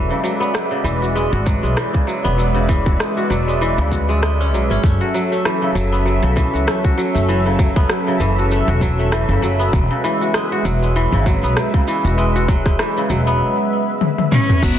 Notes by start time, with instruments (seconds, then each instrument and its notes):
Already playing: kora E3 A3 B3 F#4, analog synth pad G#3 B4 D5 E5
0.10 kora C#3
0.24 kora F#3, cabasa
0.40 kora B3, cabasa
0.54 kora F#3, cross-stick, cabasa
0.71 kora C#3
0.84 upright bass E1, kora E3, cabasa
1.02 kora F#4, cabasa
1.15 kora G#3, cabasa
1.33 upright bass G#1, kora F#4
1.46 kora F#3, kick, cabasa
1.63 upright bass B1, kora G#3, cabasa
1.77 kora E3, cross-stick, cabasa
1.93 kora C#3, kick
2.07 kora F#3, cabasa
2.24 upright bass E1, kora B3, cabasa
2.38 kora F#3, cabasa
2.54 kora C#3
2.68 kora E3, kick, cabasa
2.86 kora F#4, kick, cabasa
2.99 kora G#3, cross-stick, cabasa
3.17 kora F#4, cabasa
3.30 upright bass E1, kora F#3, cabasa
3.48 kora G#3, cabasa
3.61 kora E3, cabasa
3.78 upright bass D2, kora C#3
3.91 kora F#4, kick, cabasa
4.09 kora G#3, cabasa
4.22 kora G#3, cross-stick, cabasa
4.41 kora C#4, cabasa
4.53 upright bass B1, kora F#3, cabasa
4.70 upright bass G#1, kora C#4, cabasa
4.83 upright bass F#1, analog synth pad F#3 C#4 A4, kora A3, kick, cabasa
5.01 kora F#4
5.14 kora F#3, cabasa
5.32 kora A3, cabasa
5.45 kora E3, cross-stick, cabasa
5.62 kora C#3
5.75 upright bass F#1, kora F#3, cabasa
5.92 kora B3, cabasa
6.05 kora F#3, cabasa
6.23 upright bass B1, kora C#3
6.36 kora E3, kick, cabasa
6.54 upright bass C#2, kora F#4, cabasa
6.67 kora A3, cross-stick, cabasa
6.84 kora F#4, kick
6.98 kora F#3, cabasa
7.15 upright bass F#1, kora A3, cabasa
7.29 kora E3, cabasa
7.46 kora C#3
7.59 kora F#3, kick, cabasa
7.76 kora B3, kick, cabasa
7.89 kora F#3, cross-stick, cabasa
8.07 kora C#3
8.20 upright bass F#1, kora E3, cabasa
8.38 kora F#4, cabasa
8.51 kora A3, cabasa
8.68 upright bass E1, kora F#4
8.81 kora F#3, kick, cabasa
8.99 kora A3, cabasa
9.12 kora E3, cross-stick, cabasa
9.29 upright bass F#1, kora C#3
9.42 upright bass F#1, kora F#3, cabasa
9.59 kora B3, cabasa
9.73 upright bass E1, kora F#3, analog synth pad G#3 B4, kick, cabasa
9.91 kora C#3
10.04 kora E3, cabasa
10.21 kora F#4, cabasa
10.34 kora G#3, cross-stick, cabasa
10.52 kora F#4
10.65 upright bass E1, kora F#3, cabasa
10.83 kora G#3, cabasa
10.96 kora E3, cabasa
11.12 upright bass G#1, kora C#3
11.26 kora F#3, kick, cabasa
11.43 upright bass B1, kora B3, cabasa
11.57 kora F#3, cross-stick, cabasa
11.74 kora C#3, kick
11.88 kora E3, cabasa
12.04 upright bass E1, kora F#4, cabasa
12.18 kora G#3, cabasa
12.35 kora F#4, cabasa
12.48 kora F#3, kick, cabasa
12.66 kora G#3, kick, cross-stick, cabasa
12.79 kora E3, cross-stick, cabasa
12.97 kora C#3, cabasa
13.10 upright bass E1, kora F#3, cabasa
13.27 kora B3, cabasa
14.01 high tom
14.18 high tom
14.32 cello C#4, mid tom
14.50 mid tom
14.62 upright bass F#1, analog synth pad E3 C#4 F#4 A5, kora F#3, cello B3, kick, crash, cabasa